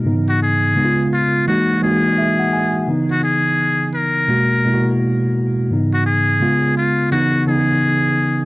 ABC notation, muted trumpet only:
X:1
M:4/4
L:1/16
Q:"Swing 16ths" 1/4=85
K:C#dor
V:1 name="Muted trumpet"
z F G4 ^E2 F2 G6 | z F G4 A6 z4 | z F G4 ^E2 F2 G6 |]